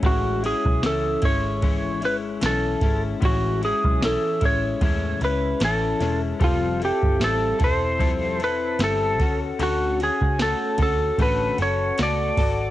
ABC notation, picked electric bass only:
X:1
M:4/4
L:1/16
Q:"Swing 16ths" 1/4=75
K:A
V:1 name="Picked electric bass" clef=bass
A,,,3 B,,, C,,2 G,,,6 B,,,2 G,,,2 | A,,,3 B,,,2 z A,,,2 E,,2 C,,2 A,,,2 E,,,2 | =F,,,3 =G,,, A,,,2 E,,,6 G,,,2 D,,2 | D,,3 C,,2 z D,,2 A,,,2 F,,,2 C,,2 G,,,2 |]